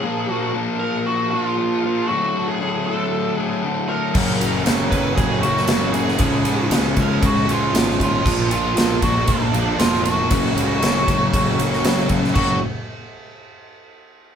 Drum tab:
CC |----------------|----------------|x---------------|----------------|
RD |----------------|----------------|--x-x-x-x-x-x-x-|x-x-x-x-x-x-x-x-|
SD |----------------|----------------|----o------oo--o|----o-------oo--|
BD |----------------|----------------|o-----o-o-------|o-----o-o-----o-|

CC |x---------------|----------------|x---------------|
RD |--x-x-x-x-x-x-x-|x-x-x-x-x-x-x-x-|----------------|
SD |----o-------oo--|----o------ooo-o|----------------|
BD |o-----o-o-------|o-----o-o-----o-|o---------------|